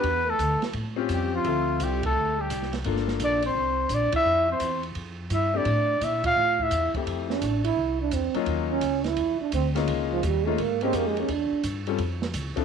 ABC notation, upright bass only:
X:1
M:4/4
L:1/8
Q:"Swing" 1/4=171
K:F
V:1 name="Upright bass" clef=bass
E,,2 D,, z A,,2 ^E,,2 | D,,2 C,,2 D,,2 C,,2 | G,,,2 B,,,2 C,,2 B,,, z | F,,2 E,,2 F,,2 G,,2 |
A,,2 B,,2 A,,2 E,, z | F,,2 A,,,2 C,,2 E,, z | _E,,2 _D,,2 =E,, z =D,,2 | _D,,2 _E,,2 _A,,2 F,,2 |
E,, z G,,2 F,,2 ^C,, z |]